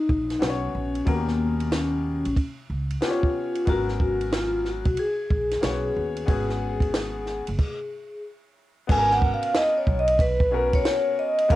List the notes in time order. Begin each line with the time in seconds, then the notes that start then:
Already playing: D#4
0.09 A#1, kick
0.30 snare, ride
0.39 B1 B3 C#4 F#4 B4, snare, hi-hat pedal, ride
0.49 C#5
0.75 A#1
0.95 ride
1.05 D#2 B2 A#3 C#4 F#4 A#4, kick, ride
1.14 G4
1.28 snare
1.60 ride
1.72 C#4, snare, hi-hat pedal, ride
2.25 A#1, ride
2.37 kick, ride
2.70 C#2
2.90 ride
3.01 B3 C#4 F4 G4 C5, snare, hi-hat pedal, ride
3.11 C#5
3.23 kick
3.55 ride
3.65 G#1 F#3 B3 C#4 A#4, kick, ride
3.69 F#4
3.88 snare
4.00 F#4, kick
4.21 ride
4.32 F4, snare, hi-hat pedal, ride
4.65 F#4, snare
4.85 B1, kick, ride
4.97 G#4, ride
5.30 A#1, kick
5.51 snare, ride
5.61 B1 A#3 C#4 F#4 C#5, snare, hi-hat pedal, ride
5.67 B3
5.97 D#2
6.17 ride
6.26 G#1 B3 C#4 F#4 G#4, kick, ride
6.50 snare
6.80 kick, ride
6.94 snare, hi-hat pedal, ride
7.26 snare
7.47 F#1, ride
7.59 kick, crash
8.87 G#1 B3 C#4 F#4, kick, crash
8.91 A4 G#5
8.97 A#4
9.10 F#5, snare
9.22 kick
9.34 F5
9.43 ride
9.54 D#5, snare, hi-hat pedal, ride
9.78 C#5
9.87 B1, kick
9.99 D#5
10.07 ride
10.19 B4, kick, ride
10.40 kick
10.51 B3 C#4 F#4 A#4
10.73 C#5, kick, ride
10.85 snare, hi-hat pedal, ride
11.19 D#5
11.38 ride
11.48 D#2 B3 C#4 G4 A#4 F5, kick, ride